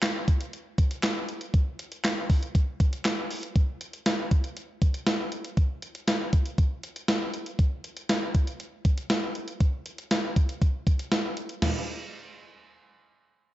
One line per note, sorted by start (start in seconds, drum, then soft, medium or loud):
0.02 snare loud
0.02 clap medium
0.02 closed hi-hat medium
0.28 kick loud
0.28 closed hi-hat medium
0.41 closed hi-hat medium
0.53 closed hi-hat medium
0.78 kick medium
0.78 closed hi-hat medium
0.91 closed hi-hat medium
1.03 snare loud
1.03 clap loud
1.03 closed hi-hat medium
1.29 closed hi-hat medium
1.41 closed hi-hat medium
1.54 kick loud
1.54 closed hi-hat medium
1.79 closed hi-hat medium
1.92 closed hi-hat medium
2.04 snare loud
2.04 clap medium
2.04 closed hi-hat medium
2.30 kick loud
2.30 open hi-hat medium
2.43 closed hi-hat medium
2.55 kick medium
2.55 closed hi-hat medium
2.80 kick medium
2.80 closed hi-hat medium
2.93 closed hi-hat medium
3.05 snare loud
3.05 clap loud
3.05 closed hi-hat medium
3.31 open hi-hat medium
3.43 closed hi-hat medium
3.56 kick loud
3.56 closed hi-hat medium
3.81 closed hi-hat medium
3.93 closed hi-hat medium
4.06 snare loud
4.06 closed hi-hat medium
4.31 kick medium
4.31 closed hi-hat medium
4.44 closed hi-hat medium
4.57 closed hi-hat medium
4.82 kick medium
4.82 closed hi-hat medium
4.94 closed hi-hat medium
5.07 snare loud
5.07 closed hi-hat medium
5.32 closed hi-hat medium
5.44 closed hi-hat medium
5.57 kick loud
5.57 closed hi-hat medium
5.82 closed hi-hat medium
5.95 closed hi-hat medium
6.08 snare loud
6.08 closed hi-hat medium
6.33 kick medium
6.33 closed hi-hat medium
6.46 closed hi-hat medium
6.58 kick medium
6.58 closed hi-hat medium
6.83 closed hi-hat medium
6.96 closed hi-hat medium
7.08 snare loud
7.08 closed hi-hat medium
7.34 closed hi-hat medium
7.46 closed hi-hat medium
7.59 kick loud
7.59 closed hi-hat medium
7.84 closed hi-hat medium
7.97 closed hi-hat medium
8.09 snare loud
8.09 closed hi-hat medium
8.35 kick medium
8.35 closed hi-hat medium
8.47 closed hi-hat medium
8.60 closed hi-hat medium
8.85 kick medium
8.85 closed hi-hat medium
8.98 closed hi-hat medium
9.10 snare loud
9.10 closed hi-hat medium
9.35 closed hi-hat medium
9.48 closed hi-hat medium
9.60 kick loud
9.60 closed hi-hat medium
9.86 closed hi-hat medium
9.98 closed hi-hat medium
10.11 snare loud
10.11 closed hi-hat medium
10.36 kick medium
10.36 closed hi-hat medium
10.49 closed hi-hat medium
10.62 kick medium
10.62 closed hi-hat medium
10.87 kick medium
10.87 closed hi-hat medium
10.99 closed hi-hat medium
11.12 snare loud
11.12 closed hi-hat medium
11.37 closed hi-hat medium
11.49 closed hi-hat soft
11.62 snare medium
11.62 floor tom medium
11.62 crash medium